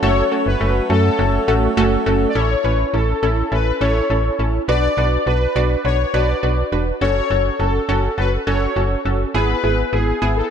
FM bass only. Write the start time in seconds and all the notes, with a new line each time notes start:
0.03 F#1
0.46 F#1
0.61 F#1
0.90 F#2
1.19 F#1
1.48 A1
1.77 F#1
2.06 F#1
2.35 A1
2.64 A1
2.94 A1
3.23 A1
3.52 A1
3.81 A1
4.10 A1
4.39 A1
4.68 B1
4.97 B1
5.26 B1
5.56 B1
5.85 B1
6.14 B1
6.43 B1
6.72 E1
7.01 F#1
7.30 F#1
7.59 F#1
7.89 F#1
8.18 F#1
8.47 F#1
8.76 F#1
9.05 F#1
9.34 G#1
9.64 G#1
9.93 G#1
10.22 G#1